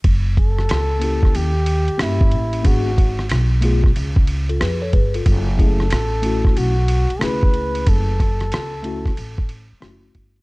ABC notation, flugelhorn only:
X:1
M:4/4
L:1/8
Q:"Swing 16ths" 1/4=92
K:F#m
V:1 name="Flugelhorn"
z A3 =G2 E2 | F2 z6 | z A3 F2 B2 | A6 z2 |]